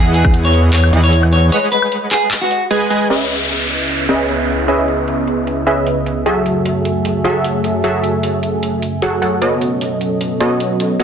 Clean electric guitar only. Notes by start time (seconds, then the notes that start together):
0.14 G#4
0.45 C#5
0.74 C#5
1.04 C#5
1.33 C#5
1.52 C#5
1.72 B4
2.11 G#4
2.41 F#4